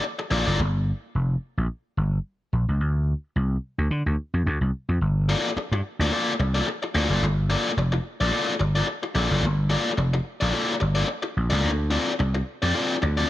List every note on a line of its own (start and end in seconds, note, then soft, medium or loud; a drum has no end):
0.03 muted overdriven electric guitar stroke soft
0.19 muted overdriven electric guitar stroke soft
0.31 0.42 A#1 medium
0.31 0.46 A#3 medium
0.31 0.46 F4 medium
0.31 0.46 A4 medium
0.31 0.45 D5 medium
0.46 0.56 F#1 medium
0.46 0.59 A#3 medium
0.46 0.59 F4 medium
0.46 0.59 A4 medium
0.46 0.59 D5 medium
0.59 0.91 G1 loud
1.15 1.35 F1 medium
1.58 1.66 A#1 medium
1.97 2.18 G1 medium
2.53 2.64 A#1 loud
2.69 2.81 C#2 medium
2.81 3.12 D2 medium
3.36 3.56 C2 medium
3.78 3.87 D2 medium
3.91 4.02 D3 loud
4.06 4.15 D2 medium
4.34 4.43 F2 medium
4.46 4.58 D2 loud
4.61 4.70 C2 medium
4.89 4.98 F2 medium
5.01 5.33 G1 loud
5.29 5.49 A#3 medium
5.29 5.49 F4 medium
5.29 5.49 A4 medium
5.29 5.50 D5 loud
5.57 muted slap bass stroke soft
5.57 muted overdriven electric guitar stroke soft
5.72 5.81 G2 loud
5.72 muted overdriven electric guitar stroke soft
5.99 6.08 D2 medium
5.99 6.11 A#3 medium
5.99 6.11 F4 medium
5.99 6.11 A4 medium
5.99 6.12 D5 medium
6.12 6.32 A#3 medium
6.12 6.32 F4 medium
6.12 6.32 A4 medium
6.12 6.33 D5 medium
6.39 6.60 C2 loud
6.39 muted overdriven electric guitar stroke soft
6.54 6.66 A#3 medium
6.54 6.67 F4 medium
6.54 6.67 A4 medium
6.54 6.67 D5 medium
6.67 muted overdriven electric guitar stroke soft
6.83 muted overdriven electric guitar stroke soft
6.94 7.06 D2 loud
6.94 7.10 A#3 medium
6.94 7.10 F4 medium
6.94 7.10 A4 medium
6.94 7.09 D5 medium
7.10 7.19 F#1 medium
7.10 7.24 A#3 medium
7.10 7.24 F4 medium
7.10 7.24 A4 medium
7.10 7.23 D5 medium
7.22 7.54 G1 loud
7.50 7.70 A#3 medium
7.50 7.70 F4 medium
7.50 7.71 A4 medium
7.50 7.70 D5 medium
7.77 7.98 F1 loud
7.77 muted overdriven electric guitar stroke soft
7.92 muted overdriven electric guitar stroke soft
8.20 8.29 A#1 medium
8.20 8.30 A#3 medium
8.20 8.31 F4 medium
8.20 8.31 A4 medium
8.20 8.32 D5 medium
8.32 8.52 A#3 medium
8.32 8.53 F4 medium
8.32 8.53 A4 medium
8.32 8.53 D5 medium
8.59 8.81 G1 loud
8.59 muted overdriven electric guitar stroke soft
8.75 8.85 A#3 medium
8.75 8.86 F4 medium
8.75 8.86 A4 medium
8.75 8.86 D5 medium
8.86 muted overdriven electric guitar stroke soft
9.03 muted overdriven electric guitar stroke medium
9.15 9.27 A#1 loud
9.15 9.30 A#3 medium
9.15 9.29 F4 medium
9.15 9.29 A4 medium
9.15 9.29 D5 medium
9.30 9.40 F#1 medium
9.30 9.45 A#3 soft
9.30 9.44 F4 soft
9.30 9.44 A4 medium
9.30 9.44 D5 medium
9.43 9.75 G1 loud
9.70 9.90 A#3 medium
9.70 9.91 F4 medium
9.70 9.91 A4 medium
9.70 9.91 D5 loud
9.97 10.18 F1 loud
9.97 muted overdriven electric guitar stroke soft
10.13 muted overdriven electric guitar stroke soft
10.41 10.51 A#1 medium
10.41 10.51 A#3 medium
10.41 10.52 F4 medium
10.41 10.52 A4 medium
10.41 10.53 D5 medium
10.53 10.73 A#3 loud
10.53 10.74 F4 medium
10.53 10.74 A4 loud
10.53 10.74 D5 medium
10.80 11.02 G1 medium
10.80 muted overdriven electric guitar stroke soft
10.95 11.06 A#3 medium
10.95 11.07 F4 medium
10.95 11.07 A4 medium
10.95 11.07 D5 medium
11.07 muted overdriven electric guitar stroke soft
11.22 muted overdriven electric guitar stroke medium
11.37 11.48 A#1 medium
11.50 11.61 C#2 medium
11.50 11.70 A#3 medium
11.50 11.70 F4 medium
11.50 11.70 A4 medium
11.50 11.69 D5 medium
11.64 11.96 D2 loud
11.90 12.11 C4 medium
11.90 12.12 F4 medium
11.90 12.12 A4 medium
11.90 12.12 D5 medium
12.19 12.40 C2 medium
12.19 muted overdriven electric guitar stroke soft
12.34 muted overdriven electric guitar stroke soft
12.62 12.72 F2 medium
12.62 12.73 C4 medium
12.62 12.73 F4 medium
12.62 12.74 A4 loud
12.62 12.74 D5 medium
12.74 12.95 C4 medium
12.74 12.95 F4 loud
12.74 12.95 A4 loud
12.74 12.96 D5 medium
13.02 13.23 D2 loud
13.02 muted overdriven electric guitar stroke soft
13.17 13.28 C4 medium
13.17 13.28 F4 medium
13.17 13.29 A4 medium
13.17 13.29 D5 medium